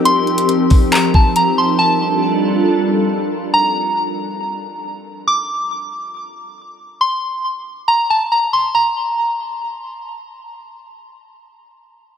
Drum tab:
HH |x-xxx-o-x---x---|----------------|----------------|----------------|
CP |--------x-------|----------------|----------------|----------------|
BD |------o---o-----|----------------|----------------|----------------|

HH |----------------|----------------|----------------|
CP |----------------|----------------|----------------|
BD |----------------|----------------|----------------|